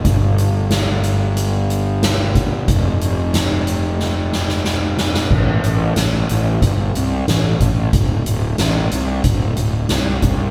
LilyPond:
<<
  \new Staff \with { instrumentName = "Picked electric bass" } { \clef bass \time 4/4 \key d \minor \tempo 4 = 92 g,,1 | f,,1 | a,,8 a,,8 a,,8 a,,8 g,,8 c,8 a,,8 a,,8 | d,,8 d,,8 a,,8 c,8 d,,8 d,,8 c,8 c,8 | }
  \new DrumStaff \with { instrumentName = "Drums" } \drummode { \time 4/4 <hh bd>8 hh8 <hh sn>8 hh8 hh8 hh8 <hh sn>8 <hh bd>8 | <hh bd>8 hh8 <hh sn>8 hh8 sn8 sn16 sn16 sn8 sn16 sn16 | <cymc bd>8 hh8 <hh sn>8 hh8 <hh bd>8 hh8 <hh sn>8 <hh bd>8 | <hh bd>8 hh8 <hh sn>8 hh8 <hh bd>8 hh8 <hh sn>8 <hh bd>8 | }
>>